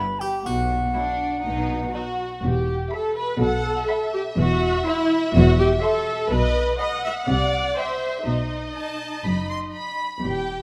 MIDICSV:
0, 0, Header, 1, 8, 480
1, 0, Start_track
1, 0, Tempo, 495050
1, 437, Time_signature, 4, 2, 24, 8
1, 2358, Tempo, 487409
1, 10422, End_track
2, 0, Start_track
2, 0, Title_t, "Flute"
2, 0, Program_c, 0, 73
2, 0, Note_on_c, 0, 83, 71
2, 190, Note_on_c, 0, 79, 57
2, 204, Note_off_c, 0, 83, 0
2, 422, Note_off_c, 0, 79, 0
2, 428, Note_on_c, 0, 78, 61
2, 1846, Note_off_c, 0, 78, 0
2, 10422, End_track
3, 0, Start_track
3, 0, Title_t, "Violin section"
3, 0, Program_c, 1, 48
3, 919, Note_on_c, 1, 62, 55
3, 1366, Note_off_c, 1, 62, 0
3, 1401, Note_on_c, 1, 63, 46
3, 1874, Note_on_c, 1, 66, 44
3, 1880, Note_off_c, 1, 63, 0
3, 2346, Note_off_c, 1, 66, 0
3, 2827, Note_on_c, 1, 76, 54
3, 2831, Note_on_c, 1, 83, 47
3, 3189, Note_off_c, 1, 76, 0
3, 3191, Note_off_c, 1, 83, 0
3, 3789, Note_on_c, 1, 83, 62
3, 3790, Note_on_c, 1, 76, 55
3, 4148, Note_off_c, 1, 83, 0
3, 4149, Note_off_c, 1, 76, 0
3, 4753, Note_on_c, 1, 84, 62
3, 4755, Note_on_c, 1, 76, 65
3, 5106, Note_off_c, 1, 84, 0
3, 5108, Note_off_c, 1, 76, 0
3, 5701, Note_on_c, 1, 76, 72
3, 5701, Note_on_c, 1, 84, 70
3, 6059, Note_off_c, 1, 76, 0
3, 6059, Note_off_c, 1, 84, 0
3, 6660, Note_on_c, 1, 83, 66
3, 6661, Note_on_c, 1, 75, 53
3, 7016, Note_off_c, 1, 75, 0
3, 7016, Note_off_c, 1, 83, 0
3, 7616, Note_on_c, 1, 79, 51
3, 7619, Note_on_c, 1, 76, 46
3, 7977, Note_off_c, 1, 79, 0
3, 7979, Note_off_c, 1, 76, 0
3, 8587, Note_on_c, 1, 81, 48
3, 9037, Note_off_c, 1, 81, 0
3, 9069, Note_on_c, 1, 83, 45
3, 9312, Note_off_c, 1, 83, 0
3, 9320, Note_on_c, 1, 84, 47
3, 9399, Note_off_c, 1, 84, 0
3, 9553, Note_on_c, 1, 83, 45
3, 10027, Note_off_c, 1, 83, 0
3, 10422, End_track
4, 0, Start_track
4, 0, Title_t, "Violin section"
4, 0, Program_c, 2, 48
4, 910, Note_on_c, 2, 64, 42
4, 988, Note_off_c, 2, 64, 0
4, 1880, Note_on_c, 2, 63, 39
4, 1958, Note_off_c, 2, 63, 0
4, 3314, Note_on_c, 2, 78, 66
4, 3761, Note_off_c, 2, 78, 0
4, 3799, Note_on_c, 2, 76, 61
4, 6184, Note_off_c, 2, 76, 0
4, 6188, Note_on_c, 2, 75, 78
4, 6653, Note_off_c, 2, 75, 0
4, 6660, Note_on_c, 2, 78, 69
4, 7600, Note_off_c, 2, 78, 0
4, 7620, Note_on_c, 2, 76, 50
4, 8094, Note_off_c, 2, 76, 0
4, 8111, Note_on_c, 2, 75, 53
4, 9800, Note_off_c, 2, 75, 0
4, 10041, Note_on_c, 2, 79, 57
4, 10422, Note_off_c, 2, 79, 0
4, 10422, End_track
5, 0, Start_track
5, 0, Title_t, "Harpsichord"
5, 0, Program_c, 3, 6
5, 0, Note_on_c, 3, 71, 63
5, 159, Note_off_c, 3, 71, 0
5, 207, Note_on_c, 3, 67, 44
5, 426, Note_off_c, 3, 67, 0
5, 450, Note_on_c, 3, 66, 47
5, 1847, Note_off_c, 3, 66, 0
5, 10422, End_track
6, 0, Start_track
6, 0, Title_t, "Viola section"
6, 0, Program_c, 4, 48
6, 916, Note_on_c, 4, 54, 41
6, 993, Note_off_c, 4, 54, 0
6, 1883, Note_on_c, 4, 54, 39
6, 1961, Note_off_c, 4, 54, 0
6, 2361, Note_on_c, 4, 67, 66
6, 2807, Note_off_c, 4, 67, 0
6, 2844, Note_on_c, 4, 69, 69
6, 3076, Note_off_c, 4, 69, 0
6, 3081, Note_on_c, 4, 71, 72
6, 3314, Note_off_c, 4, 71, 0
6, 3317, Note_on_c, 4, 69, 79
6, 4021, Note_off_c, 4, 69, 0
6, 4031, Note_on_c, 4, 67, 74
6, 4109, Note_off_c, 4, 67, 0
6, 4272, Note_on_c, 4, 66, 93
6, 4741, Note_off_c, 4, 66, 0
6, 4752, Note_on_c, 4, 64, 91
6, 5218, Note_off_c, 4, 64, 0
6, 5225, Note_on_c, 4, 66, 100
6, 5459, Note_off_c, 4, 66, 0
6, 5470, Note_on_c, 4, 67, 89
6, 5549, Note_off_c, 4, 67, 0
6, 5700, Note_on_c, 4, 69, 94
6, 6171, Note_off_c, 4, 69, 0
6, 6180, Note_on_c, 4, 71, 90
6, 6657, Note_on_c, 4, 75, 78
6, 6658, Note_off_c, 4, 71, 0
6, 6893, Note_off_c, 4, 75, 0
6, 6900, Note_on_c, 4, 76, 86
6, 6979, Note_off_c, 4, 76, 0
6, 7130, Note_on_c, 4, 74, 78
6, 7605, Note_off_c, 4, 74, 0
6, 7618, Note_on_c, 4, 72, 79
6, 8097, Note_on_c, 4, 63, 62
6, 8102, Note_off_c, 4, 72, 0
6, 9523, Note_off_c, 4, 63, 0
6, 10039, Note_on_c, 4, 67, 64
6, 10422, Note_off_c, 4, 67, 0
6, 10422, End_track
7, 0, Start_track
7, 0, Title_t, "Cello section"
7, 0, Program_c, 5, 48
7, 432, Note_on_c, 5, 47, 51
7, 836, Note_off_c, 5, 47, 0
7, 1398, Note_on_c, 5, 47, 60
7, 1799, Note_off_c, 5, 47, 0
7, 2363, Note_on_c, 5, 40, 65
7, 2741, Note_off_c, 5, 40, 0
7, 3314, Note_on_c, 5, 47, 76
7, 3694, Note_off_c, 5, 47, 0
7, 4275, Note_on_c, 5, 40, 74
7, 4652, Note_off_c, 5, 40, 0
7, 5233, Note_on_c, 5, 40, 101
7, 5607, Note_off_c, 5, 40, 0
7, 6185, Note_on_c, 5, 47, 85
7, 6561, Note_off_c, 5, 47, 0
7, 7142, Note_on_c, 5, 48, 80
7, 7520, Note_off_c, 5, 48, 0
7, 8101, Note_on_c, 5, 47, 55
7, 8485, Note_off_c, 5, 47, 0
7, 9073, Note_on_c, 5, 42, 62
7, 9455, Note_off_c, 5, 42, 0
7, 10038, Note_on_c, 5, 40, 59
7, 10419, Note_off_c, 5, 40, 0
7, 10422, End_track
8, 0, Start_track
8, 0, Title_t, "Double bass section"
8, 0, Program_c, 6, 48
8, 437, Note_on_c, 6, 35, 53
8, 839, Note_off_c, 6, 35, 0
8, 1400, Note_on_c, 6, 35, 47
8, 1800, Note_off_c, 6, 35, 0
8, 2364, Note_on_c, 6, 28, 64
8, 2742, Note_off_c, 6, 28, 0
8, 3319, Note_on_c, 6, 35, 74
8, 3697, Note_off_c, 6, 35, 0
8, 4279, Note_on_c, 6, 28, 70
8, 4654, Note_off_c, 6, 28, 0
8, 5233, Note_on_c, 6, 28, 88
8, 5607, Note_off_c, 6, 28, 0
8, 6186, Note_on_c, 6, 35, 78
8, 6561, Note_off_c, 6, 35, 0
8, 7142, Note_on_c, 6, 36, 70
8, 7520, Note_off_c, 6, 36, 0
8, 8103, Note_on_c, 6, 35, 55
8, 8486, Note_off_c, 6, 35, 0
8, 9073, Note_on_c, 6, 30, 48
8, 9454, Note_off_c, 6, 30, 0
8, 10043, Note_on_c, 6, 28, 55
8, 10421, Note_off_c, 6, 28, 0
8, 10422, End_track
0, 0, End_of_file